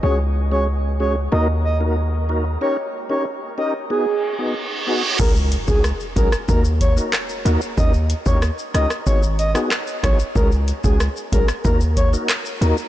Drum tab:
CC |----------------|----------------|x---------------|----------------|
HH |----------------|----------------|--x---x---x---x-|--x---x---x---x-|
SH |----------------|----------------|xxxxxxxxxxxxxxxx|xxxxxxxxxxxxxxxx|
CP |----------------|----------------|------------x---|------------x---|
SD |----------------|----------------|----r--r----r---|----r-rr---rr-r-|
BD |----------------|----------------|o--o--o-o-o-----|o--o----o-----o-|

CC |----------------|
HH |--x---x---x---x-|
SH |xxxxxxxxxxxxxxxx|
CP |------------x---|
SD |----r--r----r---|
BD |o--o--o-o-o-----|